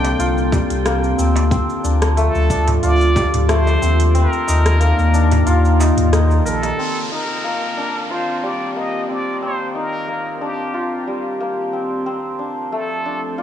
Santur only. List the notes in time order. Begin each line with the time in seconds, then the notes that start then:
Already playing: G3 A#3 C4 D4 F4
0.19 F4
0.53 G3
0.86 A#3
1.18 C4
1.51 C4
1.84 D4
2.17 A3
2.50 D4
2.83 F4
3.16 G3
3.49 A3
3.82 C4
4.15 C4
4.48 D#4
4.80 A#3
5.13 D4
5.46 F4
5.79 D#4
6.12 D#4
6.45 A#4
6.78 C4
7.12 D#4
7.44 A#3
7.77 D4
8.10 F4
8.43 G3
8.76 A#3
9.09 C4
9.42 C4
9.75 D#4
10.08 A#3
10.41 D4
10.74 F4
11.07 G3
11.40 A#3
11.73 C4
12.06 C4
12.39 D4
12.72 A3
13.06 D4
13.38 F4